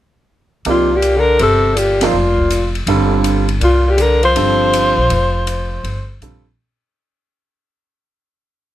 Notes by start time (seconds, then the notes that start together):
0.65 C2 A#2 C3 F3 A#3 D#4 G4, ride
0.70 F4
0.92 A#2
0.96 G4
1.02 hi-hat pedal, ride
1.16 D3 A#4
1.39 G1 C3 A4, ride
1.75 A#2 G4, hi-hat pedal, ride
2.01 A#2 F3 A#3 D#4 F4 A4 C5, snare, ride
2.14 F1
2.38 kick
2.50 hi-hat pedal, ride
2.75 ride
2.86 G1 D3 G3 C4 F4 A4, ride
3.24 hi-hat pedal, ride
3.49 ride
3.61 C2 A#2 F4, ride
3.86 A#2
3.90 G4
3.98 D3, hi-hat pedal, ride
4.02 A#4
4.23 F3 C5, ride
4.35 G1 D3 G3 C4 F4 A4, ride
4.73 hi-hat pedal, ride
4.97 A#1
5.10 F1, ride
5.47 hi-hat pedal, ride
5.84 G1, ride
6.21 A#1 D3 G3 C4 F4 A4, hi-hat pedal, ride